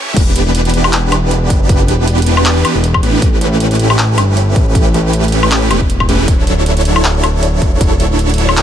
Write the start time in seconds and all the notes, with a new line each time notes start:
0.08 E3 A3 C#4 G4 E5
0.16 E1 E3 B3 D4 B4, kick, closed hi-hat, crash
0.36 closed hi-hat
0.55 closed hi-hat
0.65 closed hi-hat
0.70 closed hi-hat
0.74 closed hi-hat
0.84 E3 B3 D4 G4 B4, high woodblock
0.93 clap, closed hi-hat
1.03 E3 B3 D4 G4 B4
1.12 closed hi-hat, high woodblock
1.31 closed hi-hat
1.50 F#1, kick, closed hi-hat
1.61 E3 B3 D4 G4 B4
1.69 kick, closed hi-hat
1.88 E1, closed hi-hat
2.08 closed hi-hat
2.18 closed hi-hat
2.22 closed hi-hat
2.27 closed hi-hat
2.37 E3 B3 D4 G4 B4, high woodblock
2.46 clap, closed hi-hat
2.56 E3 B3 D4 G4 B4
2.65 E3 B3 D4 G4 B4, closed hi-hat, high woodblock
2.75 E1
2.84 closed hi-hat
2.94 kick, high woodblock
3.03 A1 E3 B3 D4 G4 B4, closed hi-hat
3.22 A3 C#4 G4 B4, kick, closed hi-hat
3.41 A1, closed hi-hat
3.60 closed hi-hat
3.71 closed hi-hat
3.75 closed hi-hat
3.79 closed hi-hat
3.90 E3 A3 C#4 G4 B4, high woodblock
3.99 clap, closed hi-hat
4.09 E3 A3 C#4 G4 B4
4.18 G1, closed hi-hat, high woodblock
4.37 closed hi-hat
4.56 A1, kick, closed hi-hat
4.66 E3 A3 C#4 G4 B4
4.75 kick, closed hi-hat
4.94 A1, closed hi-hat
5.13 closed hi-hat
5.24 closed hi-hat
5.28 closed hi-hat
5.32 closed hi-hat
5.43 E3 A3 C#4 G4 B4, high woodblock
5.52 clap, closed hi-hat
5.62 E3 A3 C#4 G4 B4
5.71 E1 E3 A3 C#4 G4 B4, closed hi-hat, high woodblock
5.81 kick
5.90 closed hi-hat
6.00 kick, high woodblock
6.09 E1 E3 A3 C#4 G4 B4, closed hi-hat
6.28 D1, kick, closed hi-hat
6.47 closed hi-hat
6.66 closed hi-hat
6.77 closed hi-hat
6.81 closed hi-hat
6.85 closed hi-hat
6.96 F#3 D4 E4 A4 C#5, high woodblock
7.05 clap, closed hi-hat
7.15 F#3 D4 E4 A4 C#5
7.24 closed hi-hat, high woodblock
7.43 closed hi-hat
7.62 E1, kick, closed hi-hat
7.72 F#3 D4 E4 A4 C#5
7.81 kick, closed hi-hat
8.00 D1, closed hi-hat
8.19 closed hi-hat
8.30 closed hi-hat
8.34 closed hi-hat
8.38 closed hi-hat
8.49 F#3 D4 E4 A4 C#5, high woodblock
8.57 clap, closed hi-hat